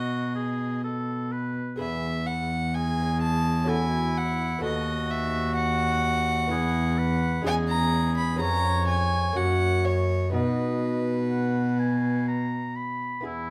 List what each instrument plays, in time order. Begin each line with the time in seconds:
Already playing: cello B2, lute B2 B3 F#4 B4, oboe F#4, violin D#5
0.35 oboe G#4
0.84 oboe A4
1.32 oboe B4
1.76 cello E2, lute B3 G#4 B4, violin E5
1.80 lute E2
2.27 violin F#5
2.74 oboe G#4, violin G#5
3.22 violin A5
3.64 lute C#4 F#4 A4
3.69 oboe E4, violin G#5
4.17 violin F#5
4.59 lute B3 F#4 A4
4.63 lute D#2, cello D#2, oboe F#4, violin D#5
5.10 violin E5
5.56 violin F#5
6.48 lute B3 E4 G#4, oboe G#4
6.52 cello E2, lute E2
6.98 oboe B4
7.42 cello E2, lute G#3 C#4 G#4
7.46 lute E2, oboe G#4, violin G#5
7.68 violin A#5
8.17 violin B5
8.36 lute B3 C#4 G#4
8.40 lute F2, cello F2, oboe C#5, violin A#5
8.88 violin G#5
9.33 cello F#2, lute A#3 C#4 F#4, violin F#5
9.37 lute F#2
9.85 violin C#5
10.30 cello B2, lute B2 B3 D#4 F#4, violin B4
10.34 oboe D#5
11.30 oboe F#5
11.79 oboe G#5
12.28 oboe A#5
12.76 oboe B5
13.21 lute B3 E4 G#4
13.25 lute E2, cello E2, oboe E4